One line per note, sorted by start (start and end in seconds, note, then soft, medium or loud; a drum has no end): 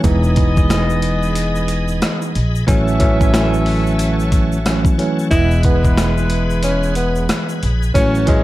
0.04 1.98 E1 loud
0.04 2.32 E3 loud
0.04 2.32 G#3 medium
0.04 2.31 B3 medium
0.04 2.32 B3 medium
0.04 2.33 D#4 loud
0.04 2.65 G#4 medium
0.04 2.31 G#4 medium
0.04 2.65 D#5 medium
0.04 2.31 D#5 loud
0.04 2.65 B5 medium
0.04 kick loud
0.04 closed hi-hat medium
0.04 shaker medium
0.23 shaker soft
0.36 kick loud
0.36 closed hi-hat medium
0.57 kick loud
0.57 shaker medium
0.70 cross-stick medium
0.70 snare loud
0.70 closed hi-hat medium
0.70 shaker medium
0.90 shaker soft
1.02 closed hi-hat medium
1.23 shaker soft
1.35 closed hi-hat loud
1.35 shaker medium
1.55 shaker soft
1.68 closed hi-hat medium
1.68 shaker medium
1.88 shaker soft
2.02 cross-stick medium
2.02 snare loud
2.02 closed hi-hat medium
2.02 shaker medium
2.22 shaker medium
2.35 2.64 A#1 medium
2.35 closed hi-hat medium
2.55 shaker medium
2.67 4.81 A1 loud
2.67 2.98 E3 loud
2.67 2.98 F#3 medium
2.67 2.99 A3 medium
2.67 4.95 C#4 medium
2.67 2.99 C#4 loud
2.67 5.28 F#4 medium
2.67 4.95 A4 medium
2.67 5.28 C#5 medium
2.67 4.95 E5 loud
2.67 5.28 A5 medium
2.67 kick loud
2.67 closed hi-hat medium
2.67 shaker medium
2.88 shaker soft
2.99 3.31 E3 loud
2.99 3.31 F#3 medium
2.99 3.31 A3 medium
2.99 3.31 C#4 loud
2.99 kick loud
2.99 closed hi-hat medium
3.21 kick loud
3.21 shaker medium
3.33 4.57 E3 loud
3.33 4.57 F#3 medium
3.33 4.57 A3 medium
3.33 4.57 C#4 loud
3.33 cross-stick medium
3.33 snare loud
3.33 closed hi-hat medium
3.33 shaker medium
3.54 shaker soft
3.66 open hi-hat medium
3.87 shaker soft
3.99 closed hi-hat loud
3.99 shaker medium
4.20 shaker soft
4.32 kick medium
4.32 closed hi-hat medium
4.32 shaker medium
4.52 shaker soft
4.65 4.96 E3 medium
4.65 4.96 F#3 medium
4.65 4.97 A3 medium
4.65 4.97 C#4 medium
4.65 cross-stick medium
4.65 snare loud
4.65 closed hi-hat medium
4.65 shaker medium
4.85 kick loud
4.85 shaker medium
4.98 5.29 E3 medium
4.98 5.29 F#3 medium
4.98 5.30 A3 medium
4.98 5.30 C#4 medium
4.98 closed hi-hat medium
5.19 shaker medium
5.31 7.25 E1 loud
5.31 7.59 E3 medium
5.31 7.58 G#3 medium
5.31 7.60 G#3 medium
5.31 7.60 B3 medium
5.31 5.61 E4 loud
5.31 7.58 E4 medium
5.31 7.93 G#4 medium
5.31 7.58 B4 medium
5.31 7.93 B4 medium
5.31 7.60 D#5 loud
5.31 7.93 B5 medium
5.31 kick loud
5.31 closed hi-hat medium
5.31 shaker medium
5.51 shaker soft
5.63 6.14 B3 medium
5.63 kick loud
5.63 closed hi-hat medium
5.84 kick loud
5.84 shaker medium
5.97 cross-stick medium
5.97 snare loud
5.97 closed hi-hat medium
5.97 shaker medium
6.17 shaker soft
6.30 closed hi-hat medium
6.50 shaker soft
6.63 6.93 C#4 medium
6.63 closed hi-hat loud
6.63 shaker medium
6.83 shaker soft
6.95 7.26 B3 medium
6.95 closed hi-hat medium
6.95 shaker medium
7.16 shaker soft
7.29 cross-stick medium
7.29 snare loud
7.29 closed hi-hat medium
7.29 shaker medium
7.49 shaker medium
7.63 7.91 A#1 medium
7.63 closed hi-hat medium
7.83 shaker medium
7.94 8.44 A1 loud
7.94 8.26 E3 loud
7.94 8.44 F#3 medium
7.94 8.26 F#3 medium
7.94 8.26 A3 medium
7.94 8.24 C#4 loud
7.94 8.26 C#4 loud
7.94 8.44 F#4 medium
7.94 8.44 C#5 medium
7.94 8.44 A5 medium
7.94 kick loud
7.94 closed hi-hat medium
7.94 shaker medium
8.15 shaker soft
8.27 8.44 E3 loud
8.27 8.44 F#3 medium
8.27 8.44 G#3 medium
8.27 8.44 C#4 loud
8.27 kick loud
8.27 closed hi-hat medium